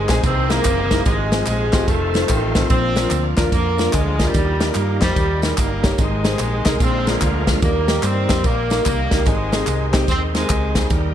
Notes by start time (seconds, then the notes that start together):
Already playing: C3 D#3 G#3 C4 D#4 G#4
0.08 A#1 C4 D#4 G#4, kick, snare, clap, ride bell, tambourine
0.23 C2 C3 D#3 E3 A#3 C4 D#4 G#4, kick, ride bell, tambourine
0.50 D#3 E3 G#3 A#3 C4 D#4 E4 A#4, snare, ride bell, tambourine
0.64 F#1, kick, clap, ride bell, tambourine
0.90 G#3 C4 D#4 E4 A#4, kick, snare, ride bell, tambourine
1.05 G#1 G#2 C3 F3 G#3 C4 F4, kick, ride bell, tambourine
1.31 C4 F4 G#4, snare, ride bell, tambourine
1.46 A#1 C3 F3 G#3, clap, ride bell, tambourine
1.73 G#1 C4 F4 G4, kick, snare, clap, ride bell, tambourine
1.87 F1 C3 D#3 F3 A3 C4 F4, kick, ride bell, tambourine
2.14 A3 C4 D#4 F4 C5, snare, ride bell, tambourine
2.28 A1 D#3 A3 C4, kick, clap, ride bell, tambourine
2.55 A3 C4 D#4 F4 A4, kick, snare, ride bell, tambourine
2.70 A#1 A#2 F3 A#3 C4 D4, kick, ride bell, tambourine
2.96 D4 F4 A#4, snare, ride bell, tambourine
3.10 D2, clap, ride bell, tambourine
3.36 D#2 D4 F4 A#4, kick, snare, clap, ride bell, tambourine
3.52 F2 D3 F3 A#3, kick, ride bell, tambourine
3.78 D4 F4 A#4, snare, ride bell, tambourine
3.93 D2 D3 F3 G#3, kick, clap, ride bell, tambourine
4.19 D4 F4 A#4, kick, snare, ride bell, tambourine
4.28 A#2 D#3 G3
4.34 D#2 D#3 G3 A#3 D#4, kick, ride bell, tambourine
4.60 D#4 G4 A#4, snare, ride bell, tambourine
4.69 D#3 G3 A#3
4.75 G2, clap, ride bell, tambourine
5.00 F2 A#2 D#3 G3 D#4 G4 C5, kick, snare, clap, ride bell, tambourine
5.16 D#2, kick, ride bell, tambourine
5.42 G#3 D#4 G4 A#4, snare, ride bell, tambourine
5.57 G1 D#3 G3 A#3, kick, clap, ride bell, tambourine
5.83 D#4 G4 C#5, kick, snare, ride bell, tambourine
5.98 G#1 G#2 C3 D#3 G#3 C4 D4, kick, ride bell, tambourine
6.03 D#4
6.23 D#4 G#4 C5, snare, ride bell, tambourine
6.39 A#1, clap, ride bell, tambourine
6.65 C2 D#4 G#4 A#4, kick, snare, clap, ride bell, tambourine
6.80 A#1 A#2 D3 F3 G#3 A#3 C4 F4, kick, ride bell, tambourine
7.06 D3 F3 G#3 A#3 D4 F4 A#4, snare, ride bell, tambourine
7.21 D2, kick, clap, ride bell, tambourine
7.47 G#3 A#3 D4 F4 A#4, kick, snare, ride bell, tambourine
7.62 D#2 D#3 G3 A#3 D#4, kick, ride bell, tambourine
7.88 A#3 D#4 G4, snare, ride bell, tambourine
8.03 G2 D#3 G3 C4, clap, ride bell, tambourine
8.29 F2 A#3 D#4 G4, kick, snare, clap, ride bell, tambourine
8.44 A#1 D#3 G3 A#3, kick, ride bell, tambourine
8.70 A#3 D#4 A#4, snare, ride bell, tambourine
8.85 C2 D#3 G3 A#3, kick, clap, ride bell, tambourine
9.11 C#2 A#3 D#4 G4, kick, snare, ride bell, tambourine
9.26 G#1 G#2 C3 D#3 G#3 C4 C#4, kick, ride bell, tambourine
9.32 D#4
9.52 C4 D#4 G#4, snare, ride bell, tambourine
9.67 C2, clap, ride bell, tambourine
9.92 C4 D#4 G4, kick, snare, clap, ride bell, tambourine
10.08 D#2 D#3 G#3 C4, kick, ride bell, tambourine
10.33 C3 D#3 G#3 C4 D#4 A#4, snare, ride bell, tambourine
10.49 C#2, kick, clap, ride bell, tambourine
10.75 A#2 D#3 G3 C4 D#4 G#4, kick, snare, ride bell, tambourine
10.90 D#2 D#3 G3 A#3 D#4, kick, ride bell, tambourine